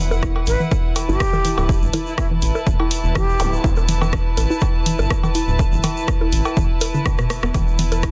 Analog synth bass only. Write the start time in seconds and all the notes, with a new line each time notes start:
Already playing: E1
0.47 A1
1.09 G1
1.58 D1
1.82 G1
2.42 A1
2.67 E1
3.04 E1
3.40 D1
3.64 E1
4.37 A1
4.99 G1
5.48 D1
5.72 G1
6.32 A1
6.57 E1
7.43 E1
7.54 E1